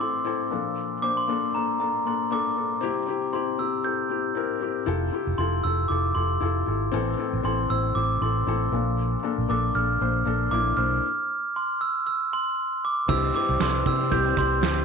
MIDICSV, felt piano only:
0, 0, Header, 1, 2, 480
1, 0, Start_track
1, 0, Tempo, 513259
1, 720, Time_signature, 4, 2, 24, 8
1, 13887, End_track
2, 0, Start_track
2, 0, Title_t, "Felt piano"
2, 0, Program_c, 0, 0
2, 0, Control_c, 0, 64, 127
2, 0, Note_on_c, 0, 45, 58
2, 0, Note_on_c, 0, 52, 57
2, 0, Note_on_c, 0, 60, 56
2, 0, Note_on_c, 0, 64, 50
2, 0, Note_on_c, 0, 69, 62
2, 0, Note_on_c, 0, 72, 75
2, 4, Note_off_c, 0, 69, 0
2, 4, Note_on_c, 0, 69, 62
2, 179, Note_off_c, 0, 60, 0
2, 183, Note_off_c, 0, 64, 0
2, 186, Note_off_c, 0, 69, 0
2, 230, Note_on_c, 0, 60, 75
2, 236, Note_on_c, 0, 64, 70
2, 247, Note_on_c, 0, 69, 82
2, 419, Note_off_c, 0, 60, 0
2, 423, Note_off_c, 0, 64, 0
2, 428, Note_off_c, 0, 69, 0
2, 472, Note_on_c, 0, 58, 58
2, 478, Note_on_c, 0, 53, 48
2, 479, Note_on_c, 0, 62, 53
2, 480, Note_on_c, 0, 46, 47
2, 487, Note_on_c, 0, 69, 64
2, 491, Control_c, 0, 64, 0
2, 492, Note_off_c, 0, 72, 0
2, 498, Note_off_c, 0, 45, 0
2, 498, Note_off_c, 0, 52, 0
2, 682, Control_c, 0, 64, 127
2, 872, Note_off_c, 0, 58, 0
2, 875, Note_off_c, 0, 62, 0
2, 880, Note_off_c, 0, 69, 0
2, 954, Note_on_c, 0, 58, 56
2, 960, Note_on_c, 0, 62, 52
2, 969, Note_on_c, 0, 72, 66
2, 1142, Note_off_c, 0, 58, 0
2, 1145, Note_off_c, 0, 62, 0
2, 1149, Note_off_c, 0, 72, 0
2, 1163, Note_off_c, 0, 46, 0
2, 1163, Note_off_c, 0, 53, 0
2, 1195, Note_on_c, 0, 58, 75
2, 1203, Note_on_c, 0, 62, 67
2, 1210, Note_on_c, 0, 69, 77
2, 1382, Note_off_c, 0, 58, 0
2, 1386, Note_off_c, 0, 62, 0
2, 1390, Note_off_c, 0, 69, 0
2, 1437, Note_on_c, 0, 58, 56
2, 1445, Note_on_c, 0, 62, 52
2, 1453, Note_on_c, 0, 69, 61
2, 1624, Note_off_c, 0, 58, 0
2, 1627, Note_off_c, 0, 62, 0
2, 1631, Note_off_c, 0, 69, 0
2, 1676, Note_on_c, 0, 58, 55
2, 1685, Note_on_c, 0, 62, 53
2, 1693, Note_on_c, 0, 69, 62
2, 1863, Note_off_c, 0, 58, 0
2, 1868, Note_off_c, 0, 62, 0
2, 1872, Note_off_c, 0, 69, 0
2, 1921, Note_on_c, 0, 58, 56
2, 1930, Note_on_c, 0, 62, 51
2, 1936, Note_on_c, 0, 69, 61
2, 2106, Note_off_c, 0, 58, 0
2, 2110, Note_off_c, 0, 62, 0
2, 2113, Note_off_c, 0, 69, 0
2, 2158, Note_on_c, 0, 58, 77
2, 2166, Note_on_c, 0, 62, 70
2, 2174, Note_on_c, 0, 69, 82
2, 2344, Note_off_c, 0, 58, 0
2, 2348, Note_off_c, 0, 62, 0
2, 2352, Note_off_c, 0, 69, 0
2, 2395, Note_on_c, 0, 58, 51
2, 2404, Note_on_c, 0, 62, 50
2, 2410, Note_on_c, 0, 69, 62
2, 2583, Note_off_c, 0, 58, 0
2, 2587, Note_off_c, 0, 62, 0
2, 2590, Note_off_c, 0, 69, 0
2, 2627, Note_on_c, 0, 60, 88
2, 2637, Note_on_c, 0, 48, 61
2, 2637, Note_on_c, 0, 55, 62
2, 2639, Note_on_c, 0, 64, 81
2, 2647, Note_on_c, 0, 67, 97
2, 2653, Control_c, 0, 64, 0
2, 2819, Note_off_c, 0, 60, 0
2, 2825, Note_off_c, 0, 64, 0
2, 2829, Note_off_c, 0, 67, 0
2, 2841, Control_c, 0, 64, 127
2, 2871, Note_on_c, 0, 60, 65
2, 2879, Note_on_c, 0, 64, 58
2, 2886, Note_on_c, 0, 67, 73
2, 3061, Note_off_c, 0, 60, 0
2, 3065, Note_off_c, 0, 64, 0
2, 3069, Note_off_c, 0, 67, 0
2, 3111, Note_on_c, 0, 60, 71
2, 3118, Note_on_c, 0, 64, 66
2, 3128, Note_on_c, 0, 67, 81
2, 3302, Note_off_c, 0, 60, 0
2, 3305, Note_off_c, 0, 64, 0
2, 3310, Note_off_c, 0, 67, 0
2, 3323, Note_off_c, 0, 48, 0
2, 3323, Note_off_c, 0, 55, 0
2, 3347, Note_on_c, 0, 60, 55
2, 3358, Note_on_c, 0, 64, 51
2, 3367, Note_on_c, 0, 67, 64
2, 3539, Note_off_c, 0, 60, 0
2, 3545, Note_off_c, 0, 64, 0
2, 3550, Note_off_c, 0, 67, 0
2, 3591, Note_on_c, 0, 60, 54
2, 3601, Note_on_c, 0, 64, 52
2, 3608, Note_on_c, 0, 69, 62
2, 3782, Note_off_c, 0, 60, 0
2, 3786, Note_off_c, 0, 64, 0
2, 3790, Note_off_c, 0, 69, 0
2, 3832, Note_on_c, 0, 60, 55
2, 3840, Note_on_c, 0, 64, 51
2, 3848, Note_on_c, 0, 67, 61
2, 4022, Note_off_c, 0, 60, 0
2, 4026, Note_off_c, 0, 64, 0
2, 4030, Note_off_c, 0, 67, 0
2, 4069, Note_on_c, 0, 60, 76
2, 4079, Note_on_c, 0, 64, 66
2, 4086, Note_on_c, 0, 70, 78
2, 4261, Note_off_c, 0, 60, 0
2, 4266, Note_off_c, 0, 64, 0
2, 4269, Note_off_c, 0, 70, 0
2, 4306, Note_on_c, 0, 60, 64
2, 4316, Note_on_c, 0, 64, 58
2, 4325, Note_on_c, 0, 67, 70
2, 4499, Note_off_c, 0, 60, 0
2, 4504, Note_off_c, 0, 64, 0
2, 4509, Note_off_c, 0, 67, 0
2, 4546, Note_on_c, 0, 64, 89
2, 4555, Note_on_c, 0, 65, 80
2, 4556, Note_on_c, 0, 48, 62
2, 4564, Note_on_c, 0, 69, 99
2, 4577, Control_c, 0, 64, 0
2, 4720, Control_c, 0, 64, 127
2, 4739, Note_off_c, 0, 64, 0
2, 4744, Note_off_c, 0, 65, 0
2, 4748, Note_off_c, 0, 69, 0
2, 4793, Note_on_c, 0, 64, 66
2, 4800, Note_on_c, 0, 65, 63
2, 4810, Note_on_c, 0, 67, 69
2, 4983, Note_off_c, 0, 64, 0
2, 4986, Note_off_c, 0, 65, 0
2, 4991, Note_off_c, 0, 67, 0
2, 5034, Note_on_c, 0, 64, 70
2, 5041, Note_on_c, 0, 65, 68
2, 5053, Note_on_c, 0, 69, 78
2, 5223, Note_off_c, 0, 64, 0
2, 5227, Note_off_c, 0, 65, 0
2, 5233, Note_off_c, 0, 69, 0
2, 5243, Note_off_c, 0, 48, 0
2, 5280, Note_on_c, 0, 64, 58
2, 5291, Note_on_c, 0, 65, 55
2, 5299, Note_on_c, 0, 69, 60
2, 5467, Note_off_c, 0, 64, 0
2, 5472, Note_off_c, 0, 65, 0
2, 5476, Note_off_c, 0, 69, 0
2, 5513, Note_on_c, 0, 64, 57
2, 5522, Note_on_c, 0, 65, 52
2, 5532, Note_on_c, 0, 69, 64
2, 5703, Note_off_c, 0, 64, 0
2, 5707, Note_off_c, 0, 65, 0
2, 5713, Note_off_c, 0, 69, 0
2, 5751, Note_on_c, 0, 64, 57
2, 5759, Note_on_c, 0, 65, 53
2, 5769, Note_on_c, 0, 69, 63
2, 5942, Note_off_c, 0, 64, 0
2, 5946, Note_off_c, 0, 65, 0
2, 5951, Note_off_c, 0, 69, 0
2, 5990, Note_on_c, 0, 64, 81
2, 6001, Note_on_c, 0, 65, 68
2, 6009, Note_on_c, 0, 69, 86
2, 6182, Note_off_c, 0, 64, 0
2, 6187, Note_off_c, 0, 65, 0
2, 6191, Note_off_c, 0, 69, 0
2, 6229, Note_on_c, 0, 64, 56
2, 6237, Note_on_c, 0, 65, 52
2, 6247, Note_on_c, 0, 69, 63
2, 6421, Note_off_c, 0, 64, 0
2, 6425, Note_off_c, 0, 65, 0
2, 6430, Note_off_c, 0, 69, 0
2, 6469, Note_on_c, 0, 60, 96
2, 6477, Note_on_c, 0, 64, 84
2, 6478, Note_on_c, 0, 45, 63
2, 6481, Note_on_c, 0, 52, 62
2, 6488, Note_on_c, 0, 69, 102
2, 6496, Control_c, 0, 64, 0
2, 6661, Note_off_c, 0, 60, 0
2, 6665, Note_off_c, 0, 64, 0
2, 6671, Note_off_c, 0, 69, 0
2, 6674, Control_c, 0, 64, 127
2, 6712, Note_on_c, 0, 60, 69
2, 6721, Note_on_c, 0, 64, 66
2, 6728, Note_on_c, 0, 69, 76
2, 6903, Note_off_c, 0, 60, 0
2, 6907, Note_off_c, 0, 64, 0
2, 6911, Note_off_c, 0, 69, 0
2, 6953, Note_on_c, 0, 60, 80
2, 6960, Note_on_c, 0, 64, 69
2, 6968, Note_on_c, 0, 69, 86
2, 7143, Note_off_c, 0, 60, 0
2, 7147, Note_off_c, 0, 64, 0
2, 7151, Note_off_c, 0, 69, 0
2, 7164, Note_off_c, 0, 45, 0
2, 7165, Note_off_c, 0, 52, 0
2, 7199, Note_on_c, 0, 60, 61
2, 7208, Note_on_c, 0, 64, 54
2, 7212, Note_on_c, 0, 72, 63
2, 7386, Note_off_c, 0, 60, 0
2, 7391, Note_off_c, 0, 64, 0
2, 7393, Note_off_c, 0, 72, 0
2, 7436, Note_on_c, 0, 60, 56
2, 7446, Note_on_c, 0, 64, 56
2, 7455, Note_on_c, 0, 72, 68
2, 7625, Note_off_c, 0, 60, 0
2, 7630, Note_off_c, 0, 64, 0
2, 7634, Note_off_c, 0, 72, 0
2, 7676, Note_on_c, 0, 60, 58
2, 7684, Note_on_c, 0, 64, 54
2, 7695, Note_on_c, 0, 69, 68
2, 7865, Note_off_c, 0, 60, 0
2, 7869, Note_off_c, 0, 64, 0
2, 7874, Note_off_c, 0, 69, 0
2, 7917, Note_on_c, 0, 60, 76
2, 7922, Note_on_c, 0, 64, 74
2, 7934, Note_on_c, 0, 69, 90
2, 8105, Note_off_c, 0, 60, 0
2, 8108, Note_off_c, 0, 64, 0
2, 8114, Note_off_c, 0, 69, 0
2, 8154, Note_on_c, 0, 58, 65
2, 8162, Note_on_c, 0, 53, 50
2, 8163, Note_on_c, 0, 46, 49
2, 8163, Note_on_c, 0, 62, 55
2, 8172, Note_on_c, 0, 69, 66
2, 8179, Control_c, 0, 64, 0
2, 8366, Control_c, 0, 64, 127
2, 8555, Note_off_c, 0, 58, 0
2, 8559, Note_off_c, 0, 62, 0
2, 8564, Note_off_c, 0, 69, 0
2, 8631, Note_on_c, 0, 58, 72
2, 8638, Note_on_c, 0, 62, 66
2, 8645, Note_on_c, 0, 69, 78
2, 8822, Note_off_c, 0, 58, 0
2, 8826, Note_off_c, 0, 62, 0
2, 8829, Note_off_c, 0, 69, 0
2, 8846, Note_off_c, 0, 53, 0
2, 8847, Note_off_c, 0, 46, 0
2, 8872, Note_on_c, 0, 58, 75
2, 8880, Note_on_c, 0, 62, 70
2, 8889, Note_on_c, 0, 69, 89
2, 9063, Note_off_c, 0, 58, 0
2, 9067, Note_off_c, 0, 62, 0
2, 9071, Note_off_c, 0, 69, 0
2, 9115, Note_on_c, 0, 58, 58
2, 9122, Note_on_c, 0, 62, 55
2, 9130, Note_on_c, 0, 69, 65
2, 9304, Note_off_c, 0, 58, 0
2, 9308, Note_off_c, 0, 62, 0
2, 9312, Note_off_c, 0, 69, 0
2, 9353, Note_on_c, 0, 58, 64
2, 9362, Note_on_c, 0, 62, 59
2, 9371, Note_on_c, 0, 72, 67
2, 9543, Note_off_c, 0, 58, 0
2, 9548, Note_off_c, 0, 62, 0
2, 9552, Note_off_c, 0, 72, 0
2, 9590, Note_on_c, 0, 58, 73
2, 9598, Note_on_c, 0, 62, 68
2, 9606, Note_on_c, 0, 69, 81
2, 9781, Note_off_c, 0, 58, 0
2, 9785, Note_off_c, 0, 62, 0
2, 9789, Note_off_c, 0, 69, 0
2, 9829, Note_on_c, 0, 58, 85
2, 9842, Note_on_c, 0, 62, 78
2, 9849, Note_on_c, 0, 64, 95
2, 10021, Note_off_c, 0, 58, 0
2, 10028, Note_off_c, 0, 62, 0
2, 10031, Note_off_c, 0, 64, 0
2, 10065, Note_on_c, 0, 58, 62
2, 10073, Note_on_c, 0, 62, 56
2, 10079, Note_on_c, 0, 72, 68
2, 10259, Note_off_c, 0, 58, 0
2, 10263, Note_off_c, 0, 62, 0
2, 10266, Note_off_c, 0, 72, 0
2, 10337, Control_c, 0, 64, 0
2, 12235, Note_on_c, 0, 60, 90
2, 12238, Note_on_c, 0, 64, 80
2, 12241, Note_on_c, 0, 43, 56
2, 12251, Note_on_c, 0, 67, 92
2, 12423, Note_off_c, 0, 60, 0
2, 12425, Note_off_c, 0, 64, 0
2, 12432, Note_off_c, 0, 67, 0
2, 12441, Control_c, 0, 64, 127
2, 12473, Note_on_c, 0, 60, 67
2, 12481, Note_on_c, 0, 64, 62
2, 12491, Note_on_c, 0, 67, 73
2, 12662, Note_off_c, 0, 60, 0
2, 12666, Note_off_c, 0, 64, 0
2, 12671, Note_off_c, 0, 67, 0
2, 12709, Note_on_c, 0, 60, 63
2, 12716, Note_on_c, 0, 64, 61
2, 12727, Note_on_c, 0, 69, 70
2, 12900, Note_off_c, 0, 60, 0
2, 12904, Note_off_c, 0, 64, 0
2, 12909, Note_off_c, 0, 69, 0
2, 12924, Note_off_c, 0, 43, 0
2, 12953, Note_on_c, 0, 60, 68
2, 12958, Note_on_c, 0, 64, 61
2, 12969, Note_on_c, 0, 67, 75
2, 13142, Note_off_c, 0, 60, 0
2, 13145, Note_off_c, 0, 64, 0
2, 13150, Note_off_c, 0, 67, 0
2, 13189, Note_on_c, 0, 60, 85
2, 13198, Note_on_c, 0, 64, 79
2, 13206, Note_on_c, 0, 67, 94
2, 13380, Note_off_c, 0, 60, 0
2, 13384, Note_off_c, 0, 64, 0
2, 13388, Note_off_c, 0, 67, 0
2, 13435, Note_on_c, 0, 60, 65
2, 13443, Note_on_c, 0, 64, 60
2, 13449, Note_on_c, 0, 67, 70
2, 13623, Note_off_c, 0, 60, 0
2, 13627, Note_off_c, 0, 64, 0
2, 13630, Note_off_c, 0, 67, 0
2, 13666, Note_on_c, 0, 60, 89
2, 13676, Note_on_c, 0, 64, 79
2, 13685, Note_on_c, 0, 67, 101
2, 13858, Note_off_c, 0, 60, 0
2, 13863, Note_off_c, 0, 64, 0
2, 13868, Note_off_c, 0, 67, 0
2, 13887, End_track
0, 0, End_of_file